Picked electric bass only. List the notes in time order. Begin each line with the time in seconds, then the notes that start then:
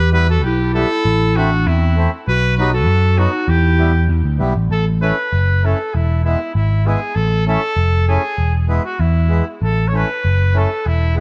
Already playing: E2
0.43 B1
1.05 A1
1.66 E2
2.28 B1
2.86 F#2
3.48 E2
4.09 E2
4.24 D2
4.40 B1
4.56 A1
4.70 A1
5.33 F#1
5.95 E1
6.55 G#1
7.16 A1
7.76 F1
8.38 E1
8.99 E2
9.62 A1
10.25 F#1
10.86 E1